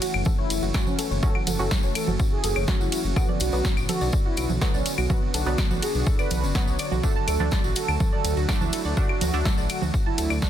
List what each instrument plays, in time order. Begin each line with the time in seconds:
Already playing: analog synth pad E3 A3 C#4 F#4
0.02 synth arpeggio sound F#4, analog polysynth F#4, closed hi-hat, ride, tambourine
0.14 detuned saw bass F#1, tambourine, claves
0.25 synth arpeggio sound A4, kick, tambourine, low conga
0.38 analog polysynth E4, synth arpeggio sound C#5
0.50 detuned saw bass F#1, closed hi-hat, ride, tambourine
0.62 detuned saw bass F#1, synth arpeggio sound F#4, tambourine
0.74 synth stab F#3 C#4 F#4, synth arpeggio sound F#4, kick, snare, tambourine, claves
0.87 detuned saw bass F#1, analog polysynth C#4, tambourine, low conga
0.99 synth arpeggio sound A4, closed hi-hat, ride, tambourine
1.11 detuned saw bass F#1, synth arpeggio sound C#5, tambourine
1.23 synth stab F#3 C#4 F#4, analog polysynth A4, kick, tambourine
1.35 synth arpeggio sound F#4, claves
1.47 detuned saw bass F#1, synth arpeggio sound F#4, analog polysynth A4, closed hi-hat, ride, tambourine, low conga
1.59 detuned saw bass F#1, synth stab F#3 C#4 F#4, tambourine
1.71 synth arpeggio sound A4, kick, snare, tambourine
1.83 detuned saw bass E1, synth arpeggio sound C#5, tambourine
1.95 analog polysynth A4, closed hi-hat, ride, tambourine, claves
2.08 detuned saw bass F#1, synth arpeggio sound F#4, tambourine, low conga
2.19 synth arpeggio sound F#4, kick, tambourine
2.32 analog polysynth G#4
2.44 detuned saw bass F#1, synth arpeggio sound A4, closed hi-hat, ride, tambourine
2.56 detuned saw bass F#1, synth arpeggio sound C#5, tambourine, claves
2.68 synth stab F#3 C#4 F#4, kick, snare, tambourine, low conga
2.80 detuned saw bass F#1, analog polysynth E4, synth arpeggio sound F#4, tambourine
2.92 synth arpeggio sound F#4, closed hi-hat, ride, tambourine
3.05 detuned saw bass F#1, tambourine
3.16 synth stab B2 F#3 B3, analog synth pad D3 B3, analog polysynth F#4, synth arpeggio sound A4, kick, tambourine, claves
3.29 synth arpeggio sound D5, low conga
3.40 detuned saw bass B1, analog polysynth F#4, closed hi-hat, ride, tambourine
3.52 detuned saw bass B1, synth stab B2 F#3 B3, synth arpeggio sound F#4, tambourine
3.65 synth arpeggio sound F#4, kick, snare, tambourine
3.77 detuned saw bass A1, tambourine, claves
3.89 analog polysynth F#4, synth arpeggio sound A4, closed hi-hat, ride, tambourine, low conga
4.01 detuned saw bass B1, synth arpeggio sound D5, tambourine
4.12 kick, tambourine
4.25 analog polysynth E4, synth arpeggio sound F#4
4.37 detuned saw bass B1, synth arpeggio sound F#4, closed hi-hat, ride, tambourine, claves
4.50 detuned saw bass B1, tambourine, low conga
4.61 synth stab B2 F#3 B3, synth arpeggio sound A4, kick, snare, tambourine
4.74 detuned saw bass B1, analog polysynth C#4, synth arpeggio sound D5, tambourine
4.86 closed hi-hat, ride, tambourine
4.98 detuned saw bass B1, synth arpeggio sound F#4, tambourine, claves
5.10 synth stab B2 F#3 B3, analog synth pad D4, analog polysynth F#4, synth arpeggio sound F#4, kick, tambourine, low conga
5.34 detuned saw bass B1, analog polysynth F#4, synth arpeggio sound A4, closed hi-hat, ride, tambourine
5.46 detuned saw bass B1, synth stab B2 F#3 B3, synth arpeggio sound D5, tambourine
5.58 kick, snare, tambourine, claves
5.71 detuned saw bass A1, synth arpeggio sound F#4, tambourine, low conga
5.82 synth arpeggio sound F#4, analog polysynth G#4, closed hi-hat, ride, tambourine
5.95 detuned saw bass B1, tambourine
6.06 synth arpeggio sound A4, kick, tambourine
6.19 analog polysynth B4, synth arpeggio sound D5, tambourine, claves
6.31 detuned saw bass B1, closed hi-hat, ride, tambourine, low conga
6.43 detuned saw bass F#1, synth arpeggio sound C#4, tambourine
6.55 synth stab B2 F#3 B3, synth arpeggio sound F#4, kick, snare, tambourine
6.67 detuned saw bass B1, analog polysynth C#5, tambourine
6.79 synth arpeggio sound D5, closed hi-hat, ride, tambourine, claves
6.92 detuned saw bass B1, synth arpeggio sound F#4, tambourine, low conga
7.03 synth stab D3 A3 D4, analog synth pad F#3 A3, synth arpeggio sound F#4, analog polysynth A4, kick, tambourine
7.16 synth arpeggio sound A5
7.28 detuned saw bass D2, synth arpeggio sound A4, analog polysynth A4, closed hi-hat, ride, tambourine, claves
7.40 detuned saw bass D2, synth stab D3 A3 D4, synth arpeggio sound D5, tambourine, low conga
7.51 kick, snare, tambourine
7.64 detuned saw bass A1, synth arpeggio sound F#4, tambourine
7.76 synth arpeggio sound F#4, analog polysynth A4, closed hi-hat, ride, tambourine
7.88 detuned saw bass D2, synth arpeggio sound A5, tambourine, claves
8.00 synth arpeggio sound A4, kick, tambourine, low conga
8.13 analog polysynth A4, synth arpeggio sound D5
8.24 detuned saw bass D2, closed hi-hat, ride, tambourine
8.37 detuned saw bass D2, synth arpeggio sound F#4, tambourine
8.49 synth stab D3 A3 D4, synth arpeggio sound F#4, kick, snare, tambourine, claves
8.61 detuned saw bass D2, analog polysynth E4, synth arpeggio sound A5, tambourine, low conga
8.73 synth arpeggio sound A4, closed hi-hat, ride, tambourine
8.85 detuned saw bass D2, synth arpeggio sound D5, tambourine
8.97 synth stab D3 A3 D4, analog polysynth F#4, kick, tambourine
9.09 synth arpeggio sound F#4, claves
9.21 detuned saw bass D2, synth arpeggio sound F#4, analog polysynth F#4, closed hi-hat, ride, tambourine, low conga
9.33 detuned saw bass D2, synth stab D3 A3 D4, synth arpeggio sound A5, tambourine
9.45 synth arpeggio sound A4, kick, snare, tambourine
9.58 detuned saw bass A1, synth arpeggio sound D5, tambourine
9.69 analog polysynth F#4, closed hi-hat, ride, tambourine, claves
9.82 detuned saw bass D2, synth arpeggio sound F#4, tambourine, low conga
9.94 synth arpeggio sound F#4, kick, tambourine
10.06 analog polysynth E4, synth arpeggio sound A5
10.18 detuned saw bass D2, synth arpeggio sound A4, closed hi-hat, ride, tambourine
10.30 detuned saw bass D2, synth arpeggio sound D5, tambourine, claves
10.42 synth stab D3 A3 D4, kick, snare, tambourine, low conga